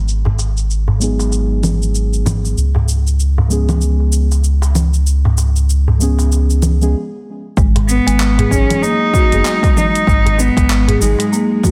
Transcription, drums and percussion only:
0.08 shaker
0.25 darbuka tek, darbuka dum
0.39 darbuka tek, shaker
0.57 shaker
0.71 shaker
0.88 darbuka dum
1.01 shaker
1.19 darbuka tek, shaker
1.32 darbuka ka, shaker
1.63 low conga, shaker
1.82 shaker
1.95 shaker
2.13 shaker
2.26 darbuka dum, low conga, shaker
2.44 darbuka ka, shaker
2.58 shaker
2.75 darbuka tek, darbuka dum
2.89 shaker
3.07 shaker
3.20 shaker
3.38 darbuka dum
3.51 shaker
3.69 darbuka tek, low conga, shaker
3.81 shaker
4.00 darbuka ka
4.13 shaker
4.32 darbuka ka, shaker
4.44 shaker
4.62 darbuka tek, shaker
4.75 low conga, shaker
4.94 shaker
5.07 shaker
5.25 darbuka tek, darbuka dum
5.38 darbuka tek, shaker
5.56 shaker
5.70 shaker
5.88 darbuka dum
6.01 shaker
6.19 darbuka tek, shaker
6.32 darbuka ka, shaker
6.50 shaker
6.62 low conga, shaker
6.82 shaker
7.57 kick, shaker
7.76 closed hi-hat, darbuka tek, darbuka dum
7.89 shaker
8.08 closed hi-hat, shaker
8.20 clap, shaker
8.38 closed hi-hat, darbuka dum
8.51 kick, shaker
8.70 closed hi-hat, darbuka tek, low conga, shaker
8.83 shaker
9.01 darbuka ka
9.14 kick, shaker
9.31 closed hi-hat, darbuka ka, shaker
9.45 clap, shaker
9.63 kick, closed hi-hat, darbuka tek, shaker
9.77 low conga, shaker
9.95 closed hi-hat, shaker
10.07 kick, shaker
10.25 closed hi-hat, darbuka tek, darbuka dum
10.38 darbuka tek, shaker
10.57 kick, closed hi-hat, shaker
10.70 clap, shaker
10.88 closed hi-hat, darbuka dum
11.02 shaker
11.19 closed hi-hat, darbuka tek, shaker
11.33 darbuka ka, shaker
11.64 kick, low conga, shaker

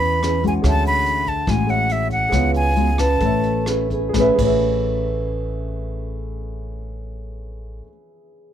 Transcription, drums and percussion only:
0.03 closed hi-hat
0.23 cross-stick, closed hi-hat
0.44 kick, closed hi-hat
0.64 kick, cross-stick, closed hi-hat
0.85 closed hi-hat
1.06 closed hi-hat
1.27 kick, closed hi-hat
1.47 kick, cross-stick, closed hi-hat
1.69 closed hi-hat
1.89 closed hi-hat
2.11 kick, closed hi-hat
2.32 kick, cross-stick, closed hi-hat
2.54 closed hi-hat
2.76 closed hi-hat
2.98 kick, cross-stick, closed hi-hat
3.21 kick, closed hi-hat
3.43 closed hi-hat
3.66 cross-stick, closed hi-hat
3.90 kick, closed hi-hat
4.14 kick, snare
4.39 kick, crash

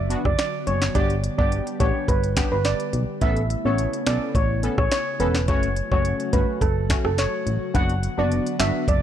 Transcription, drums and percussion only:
0.10 closed hi-hat
0.25 kick, cross-stick
0.39 finger snap, snare, closed hi-hat
0.67 closed hi-hat
0.82 snare
0.95 kick, closed hi-hat
1.10 closed hi-hat
1.24 closed hi-hat
1.39 kick
1.52 closed hi-hat
1.67 closed hi-hat
1.80 kick, closed hi-hat
2.08 kick, closed hi-hat
2.24 closed hi-hat
2.37 finger snap, kick, snare, closed hi-hat
2.65 snare, closed hi-hat
2.80 closed hi-hat
2.93 closed hi-hat
3.21 kick, closed hi-hat
3.37 closed hi-hat
3.50 closed hi-hat
3.78 closed hi-hat
3.93 closed hi-hat
4.07 finger snap, snare, closed hi-hat
4.35 kick, closed hi-hat
4.63 closed hi-hat
4.78 kick, cross-stick
4.91 finger snap, snare, closed hi-hat
5.20 closed hi-hat
5.35 snare
5.48 kick, closed hi-hat
5.63 closed hi-hat
5.76 closed hi-hat
5.92 kick
6.05 closed hi-hat
6.20 closed hi-hat
6.33 kick, closed hi-hat
6.61 kick, closed hi-hat
6.90 finger snap, kick, snare, closed hi-hat
7.05 cross-stick
7.18 snare, closed hi-hat
7.47 closed hi-hat
7.75 kick, closed hi-hat
7.90 closed hi-hat
8.03 closed hi-hat
8.32 closed hi-hat
8.47 closed hi-hat
8.60 finger snap, snare, closed hi-hat
8.88 kick, closed hi-hat

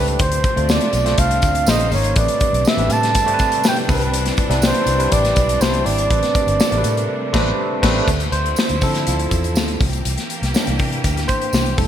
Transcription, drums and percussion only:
0.08 closed hi-hat
0.19 kick, closed hi-hat
0.32 closed hi-hat
0.44 kick, closed hi-hat
0.57 closed hi-hat
0.69 snare, tambourine
0.81 closed hi-hat
0.93 closed hi-hat, tambourine
1.06 snare, closed hi-hat
1.18 kick, closed hi-hat, tambourine
1.31 closed hi-hat
1.42 kick, closed hi-hat, tambourine
1.55 closed hi-hat
1.66 snare, tambourine
1.79 closed hi-hat
1.92 open hi-hat, tambourine
2.04 closed hi-hat
2.16 kick, closed hi-hat, tambourine
2.28 closed hi-hat
2.40 kick, closed hi-hat, tambourine
2.54 closed hi-hat
2.65 snare, tambourine
2.78 closed hi-hat
2.90 closed hi-hat, tambourine
3.03 snare, closed hi-hat
3.15 kick, closed hi-hat, tambourine
3.28 closed hi-hat
3.39 kick, closed hi-hat, tambourine
3.52 closed hi-hat
3.64 snare, tambourine
3.76 closed hi-hat
3.89 kick, open hi-hat, tambourine
4.02 closed hi-hat
4.14 closed hi-hat, tambourine
4.26 snare, closed hi-hat
4.37 kick, closed hi-hat, tambourine
4.51 snare, closed hi-hat
4.62 snare, tambourine
4.74 closed hi-hat
4.87 closed hi-hat, tambourine
5.00 closed hi-hat
5.12 kick, closed hi-hat, tambourine
5.25 snare, closed hi-hat
5.36 kick, closed hi-hat, tambourine
5.49 closed hi-hat
5.61 snare, tambourine
5.73 closed hi-hat
5.86 open hi-hat, tambourine
5.98 closed hi-hat
6.10 kick, closed hi-hat
6.23 snare, closed hi-hat
6.35 kick, closed hi-hat, tambourine
6.48 closed hi-hat
6.60 snare, tambourine
6.72 closed hi-hat
6.84 closed hi-hat, tambourine
6.97 closed hi-hat
7.34 kick, snare, crash
7.83 kick, snare, crash
8.08 kick, closed hi-hat, tambourine
8.20 closed hi-hat
8.32 closed hi-hat
8.46 closed hi-hat
8.56 snare, tambourine
8.69 closed hi-hat
8.81 kick, open hi-hat, tambourine
8.95 snare, closed hi-hat
9.07 closed hi-hat, tambourine
9.19 closed hi-hat
9.31 kick, closed hi-hat, tambourine
9.44 closed hi-hat
9.55 snare, tambourine
9.68 closed hi-hat
9.81 kick, open hi-hat, tambourine
9.93 closed hi-hat
10.05 closed hi-hat, tambourine
10.18 snare, closed hi-hat
10.30 closed hi-hat, tambourine
10.43 snare, closed hi-hat
10.54 snare, tambourine
10.67 closed hi-hat
10.79 kick, open hi-hat, tambourine
10.92 closed hi-hat
11.04 kick, closed hi-hat, tambourine
11.17 snare, closed hi-hat
11.28 kick, closed hi-hat, tambourine
11.42 closed hi-hat
11.53 snare, tambourine
11.66 closed hi-hat
11.78 kick, open hi-hat, tambourine

